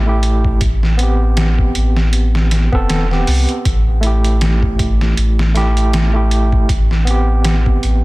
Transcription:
0.00 0.59 A1 medium
0.06 0.60 A3 medium
0.06 0.60 E4 medium
0.06 0.61 G4 medium
0.23 closed hi-hat medium
0.45 kick medium
0.61 1.73 A1 loud
0.61 kick loud
0.61 closed hi-hat medium
0.83 snare soft
0.98 2.67 B3 medium
0.98 2.68 C4 medium
0.98 closed hi-hat medium
1.03 2.70 G4 medium
1.37 snare loud
1.37 closed hi-hat medium
1.59 kick medium
1.75 2.69 A1 medium
1.75 closed hi-hat medium
1.97 snare soft
2.13 closed hi-hat medium
2.35 snare soft
2.51 snare medium
2.51 closed hi-hat medium
2.72 3.25 E1 medium
2.72 3.06 B3 medium
2.72 3.06 C4 medium
2.72 3.07 A4 medium
2.72 kick medium
2.90 snare loud
2.90 closed hi-hat medium
3.11 3.64 B3 medium
3.11 3.64 C4 medium
3.11 3.65 G4 medium
3.11 snare soft
3.27 3.46 C2 medium
3.27 open hi-hat medium
3.49 closed hi-hat soft
3.65 4.76 A1 loud
3.65 kick loud
3.65 closed hi-hat medium
4.01 5.50 A3 medium
4.01 5.52 E4 medium
4.01 closed hi-hat medium
4.06 5.53 G4 medium
4.24 closed hi-hat soft
4.41 snare loud
4.41 closed hi-hat medium
4.63 kick medium
4.79 5.14 A1 medium
4.79 kick medium
4.79 closed hi-hat medium
5.01 snare soft
5.17 6.66 A1 medium
5.17 closed hi-hat medium
5.39 snare soft
5.54 6.09 A3 medium
5.54 6.10 E4 medium
5.54 6.11 G4 medium
5.54 snare soft
5.54 closed hi-hat medium
5.77 closed hi-hat soft
5.93 snare loud
5.93 closed hi-hat medium
6.13 6.67 A3 medium
6.13 6.68 E4 medium
6.13 6.68 G4 medium
6.31 closed hi-hat medium
6.52 kick medium
6.69 7.80 A1 medium
6.69 kick loud
6.69 closed hi-hat medium
6.91 snare soft
7.05 8.04 B3 medium
7.05 8.04 C4 medium
7.05 closed hi-hat medium
7.10 8.04 G4 medium
7.45 snare loud
7.45 closed hi-hat medium
7.66 kick medium
7.83 8.04 A1 medium
7.83 closed hi-hat medium

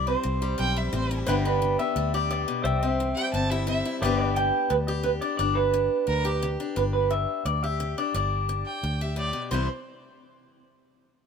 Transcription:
0.00 0.14 C2 medium
0.00 0.21 C3 medium
0.00 0.41 G3 medium
0.00 0.75 E4 medium
0.00 1.24 C5 medium
0.00 1.25 G5 medium
0.07 0.57 C4 medium
0.07 1.07 C5 medium
0.23 0.54 C2 medium
0.23 0.55 E3 medium
0.42 1.27 G3 medium
0.58 0.88 B1 medium
0.58 0.89 G2 medium
0.58 0.92 C4 soft
0.58 0.79 G5 loud
0.76 1.10 E4 medium
0.76 0.93 E5 medium
0.93 1.22 A1 medium
0.93 1.24 E3 medium
0.93 1.26 C4 medium
0.93 1.19 C5 medium
1.11 1.28 E4 medium
1.26 1.76 G1 medium
1.26 1.58 G2 medium
1.26 1.61 D3 medium
1.26 1.78 B3 medium
1.26 1.44 D4 medium
1.26 2.14 G4 medium
1.26 1.33 B4 medium
1.26 1.47 C5 medium
1.26 1.53 E5 medium
1.26 2.64 G5 medium
1.45 1.95 D4 medium
1.45 1.77 B4 medium
1.45 2.63 B4 medium
1.53 2.64 D5 medium
1.62 1.93 D3 medium
1.79 2.63 B3 medium
1.79 2.14 E5 medium
1.96 2.44 D2 medium
1.96 2.27 G2 medium
1.96 2.63 D4 medium
2.14 3.51 G4 medium
2.14 2.30 D5 medium
2.31 2.47 A2 medium
2.31 2.63 D5 medium
2.48 2.65 B2 medium
2.64 3.13 C2 medium
2.64 2.96 C3 medium
2.64 4.00 C5 medium
2.64 2.90 D5 medium
2.64 3.63 E5 medium
2.64 4.01 G5 medium
2.83 3.33 C4 medium
2.90 4.01 E5 medium
3.00 3.30 E3 medium
3.15 4.04 G3 medium
3.15 3.32 G5 medium
3.33 3.82 G1 medium
3.33 3.64 G2 medium
3.33 3.67 C4 medium
3.33 3.52 A5 medium
3.50 3.84 E4 medium
3.50 3.67 E5 medium
3.67 3.98 E3 medium
3.67 4.00 C4 medium
3.67 3.93 E5 medium
3.85 4.02 E4 medium
4.02 4.50 G1 medium
4.02 4.33 G2 medium
4.02 4.35 D3 medium
4.02 7.54 B3 medium
4.02 5.21 D4 medium
4.02 4.88 G4 medium
4.02 4.22 C5 medium
4.02 4.17 D5 medium
4.02 4.28 E5 medium
4.02 6.74 G5 medium
4.19 6.74 B4 medium
4.19 4.36 D5 medium
4.28 6.74 D5 medium
4.36 4.67 D3 medium
4.36 4.72 G5 medium
4.70 5.19 D2 medium
4.70 5.01 G2 medium
4.70 4.75 B4 medium
4.87 6.24 G4 medium
4.87 5.04 D5 medium
5.03 5.35 D3 medium
5.03 5.09 B4 medium
5.21 5.40 D4 medium
5.21 5.36 D5 medium
5.37 5.88 G1 medium
5.37 5.70 G2 medium
5.37 6.60 D4 medium
5.37 5.56 D5 loud
5.55 6.55 B4 medium
5.74 6.04 D3 medium
6.07 6.56 D2 medium
6.07 6.38 G2 medium
6.07 6.27 A#4 medium
6.25 7.63 G4 medium
6.25 6.42 G4 medium
6.43 6.73 D3 medium
6.60 6.77 D4 medium
6.76 7.25 G1 medium
6.76 7.07 G2 medium
6.76 7.97 D4 soft
6.76 6.82 B4 medium
6.93 7.11 B4 medium
7.11 7.41 D3 medium
7.11 7.45 E5 medium
7.45 7.94 D2 medium
7.45 7.76 G2 medium
7.45 7.63 D5 medium
7.63 9.01 G4 medium
7.63 7.98 E5 medium
7.80 8.11 D3 medium
7.98 8.12 D4 medium
7.98 8.14 D5 medium
8.14 8.63 G1 medium
8.14 8.45 G2 medium
8.14 9.50 D4 medium
8.14 9.14 D5 medium
8.49 8.79 D3 medium
8.66 9.03 G5 medium
8.83 9.31 D2 medium
8.83 9.14 G2 medium
9.01 9.50 G4 medium
9.01 9.17 E5 medium
9.16 9.33 A2 medium
9.16 9.42 D5 medium
9.33 9.50 B2 medium
9.51 9.67 C2 medium
9.51 9.66 C3 medium
9.51 9.67 E3 medium
9.51 9.67 G3 medium
9.51 9.67 C4 soft
9.51 9.68 E4 soft
9.51 9.67 C5 medium
9.51 9.68 C5 medium

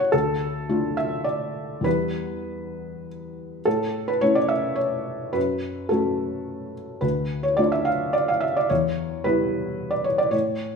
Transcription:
0.00 0.15 F#2 medium
0.00 0.15 A3 medium
0.00 0.15 C#4 medium
0.00 0.15 F#4 medium
0.00 0.13 C#5 medium
0.00 0.15 F#5 medium
0.00 0.15 A5 loud
0.12 0.67 D2 medium
0.12 0.96 A4 medium
0.69 1.81 A3 soft
0.69 1.81 D4 soft
0.69 1.82 F4 medium
0.97 1.26 E5 medium
1.24 1.84 D5 medium
1.81 3.59 E2 soft
1.81 3.60 G3 soft
1.81 3.61 B3 soft
1.81 3.61 E4 soft
1.81 3.05 B4 medium
3.65 4.22 A2 medium
3.65 4.09 A4 medium
4.08 4.22 B4 medium
4.21 5.31 A3 soft
4.21 5.31 C#4 soft
4.21 5.32 E4 soft
4.21 4.36 C#5 medium
4.35 4.50 D5 medium
4.49 4.78 E5 medium
4.76 5.34 C#5 medium
5.33 5.89 F#2 medium
5.33 5.90 B4 medium
5.89 6.99 A3 soft
5.89 6.99 C#4 soft
5.89 6.99 F#4 soft
5.89 6.74 A4 medium
7.01 7.56 D2 medium
7.01 7.44 B4 medium
7.43 7.58 C#5 medium
7.57 8.66 A3 soft
7.57 8.66 D4 soft
7.57 8.66 F4 soft
7.57 7.72 D5 medium
7.72 7.86 E5 medium
7.85 8.14 F5 medium
8.13 8.28 D5 medium
8.28 8.42 F5 medium
8.41 8.55 E5 medium
8.56 8.70 D5 medium
8.70 9.23 E2 medium
8.70 9.24 C#5 medium
9.24 10.29 G3 soft
9.24 10.30 B3 soft
9.24 10.30 E4 soft
9.24 9.92 B4 medium
9.91 10.05 D5 medium
10.04 10.19 C#5 medium
10.18 10.33 D5 medium
10.31 10.76 A2 soft
10.31 10.76 C#5 medium

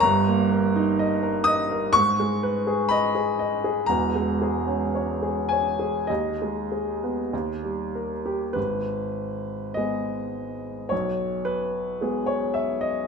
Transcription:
0.00 1.89 G1 medium
0.00 1.90 G2 medium
0.00 1.44 A#5 loud
0.28 0.65 A#3 medium
0.52 0.89 A#4 medium
0.76 1.13 D#4 medium
0.99 1.36 D#5 medium
1.23 1.60 A#4 medium
1.44 1.85 D#5 medium
1.44 1.93 D#6 loud
1.72 1.95 A#4 medium
1.93 3.86 G#2 medium
1.93 2.89 C#6 loud
2.20 2.57 G#3 medium
2.43 2.81 B4 medium
2.67 3.05 G#4 medium
2.89 3.30 D#5 medium
2.89 3.38 B5 loud
3.15 3.54 G#4 medium
3.39 3.79 D#5 medium
3.64 3.89 G#4 medium
3.86 6.05 E1 medium
3.86 6.05 E2 medium
3.86 5.47 A#5 loud
4.16 4.56 G#3 medium
4.42 4.83 G#4 medium
4.67 5.10 C#4 medium
4.95 5.38 C#5 medium
5.23 5.67 G#4 soft
5.49 5.98 C#5 soft
5.49 6.09 G#5 medium
5.79 6.09 G#4 soft
6.07 7.29 D#2 medium
6.07 7.31 D#5 medium
6.42 6.91 G#3 soft
6.72 7.20 G#4 soft
7.03 7.33 B3 soft
7.33 8.53 D#2 medium
7.63 8.13 G3 soft
7.95 8.44 A#4 soft
8.26 8.56 G4 soft
8.53 9.73 G#1 medium
8.53 9.75 B4 medium
9.74 10.87 G#3 soft
9.74 10.88 B3 soft
9.74 10.88 G#4 soft
9.74 10.90 D#5 medium
10.89 11.98 B1 medium
10.89 11.45 C#5 medium
11.45 12.27 B4 medium
12.01 13.07 G#3 soft
12.01 13.07 B3 soft
12.01 13.07 G#4 soft
12.26 12.55 C#5 medium
12.54 12.83 E5 medium
12.81 13.07 D#5 medium

